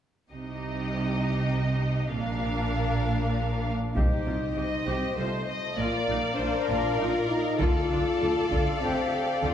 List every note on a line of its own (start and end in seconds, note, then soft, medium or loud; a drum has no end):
0.31 2.09 C2 soft
0.31 2.09 C3 soft
0.31 2.10 D#4 soft
0.31 2.09 G4 soft
0.31 2.10 D#5 soft
2.13 3.73 A#1 medium
2.13 3.73 A#2 medium
2.13 3.73 D4 medium
2.13 3.73 A#4 soft
2.13 3.73 F5 soft
3.65 3.93 D4 medium
3.95 4.04 C2 soft
3.95 4.04 C3 medium
3.95 4.85 D#4 medium
3.95 4.55 G4 soft
3.95 5.74 C5 soft
3.95 5.74 D#5 soft
3.95 taiko soft
4.26 4.35 C2 soft
4.26 4.34 C3 soft
4.26 4.35 F4 soft
4.57 4.65 C2 soft
4.57 4.65 C3 soft
4.57 4.65 G4 soft
4.57 5.14 D#5 soft
4.87 4.95 C2 soft
4.87 4.95 C3 soft
4.87 5.17 C4 medium
4.87 5.15 G4 soft
5.16 5.25 C2 soft
5.16 5.25 C3 soft
5.16 5.78 A3 medium
5.16 5.27 F4 soft
5.16 5.48 C5 soft
5.48 5.78 D#5 soft
5.77 5.86 A#1 medium
5.77 5.86 A#2 medium
5.77 6.38 A#3 medium
5.77 6.07 F4 medium
5.77 7.57 A#4 soft
5.77 6.39 D5 medium
5.77 7.57 D5 medium
5.77 7.56 F5 soft
6.08 6.16 A#1 soft
6.08 6.16 A#2 soft
6.08 6.17 D#4 soft
6.35 6.47 A#2 soft
6.35 6.98 D4 medium
6.35 6.69 C5 medium
6.39 6.47 A#1 soft
6.39 6.48 F4 soft
6.69 6.78 A#1 medium
6.69 6.77 A#2 medium
6.69 6.98 F4 medium
6.69 7.58 A#4 medium
6.99 7.08 A#1 soft
6.99 7.07 A#2 soft
6.99 7.08 D#4 soft
6.99 7.30 F4 medium
7.29 7.60 D#4 medium
7.59 7.69 D2 medium
7.59 7.68 D3 medium
7.59 7.88 F4 medium
7.59 8.52 F4 medium
7.59 9.54 A4 medium
7.59 7.91 A4 medium
7.59 9.54 D5 medium
7.59 9.54 F5 medium
7.59 taiko soft
7.91 8.00 D2 soft
7.91 7.99 D3 soft
7.91 7.99 D4 soft
7.91 8.80 A4 medium
8.20 8.29 D2 soft
8.20 8.28 D3 soft
8.20 8.30 F4 soft
8.50 8.60 D2 medium
8.50 8.58 D3 medium
8.50 8.81 D4 medium
8.50 8.80 F4 medium
8.50 taiko soft
8.80 8.90 D2 soft
8.80 8.89 D3 soft
8.80 9.40 C4 medium
8.80 8.91 D4 soft
8.84 9.42 G4 soft
9.41 9.51 D2 soft
9.41 9.50 D3 soft
9.41 9.54 D4 medium
9.41 9.54 F4 soft